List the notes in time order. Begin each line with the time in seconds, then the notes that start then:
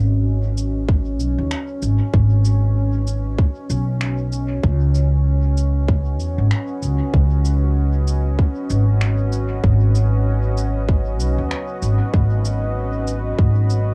Already playing: G#1 C#4 F#4 B4 D#5
0.57 cabasa
0.89 kick
1.20 B1, cabasa
1.38 D#2
1.51 finger snap
1.82 G#1, cabasa
2.14 G#1, kick
2.45 cabasa
3.07 cabasa
3.39 kick
3.70 B1, cabasa
4.01 finger snap
4.32 cabasa
4.63 C#2, kick
4.89 F#4 B4 D#5
4.95 cabasa
5.57 cabasa
5.88 kick
6.20 E2, cabasa
6.38 G#1
6.51 finger snap
6.82 C#2, cabasa
7.14 C#2, kick
7.45 cabasa
8.07 cabasa
8.39 kick
8.70 G#1, cabasa
9.01 finger snap
9.32 cabasa
9.64 G#1, kick
9.95 cabasa
10.57 cabasa
10.89 kick
11.20 B1, cabasa
11.38 D#2
11.51 finger snap
11.82 G#1, cabasa
12.14 G#1, kick
12.45 cabasa
13.07 cabasa
13.39 G#1, kick
13.70 cabasa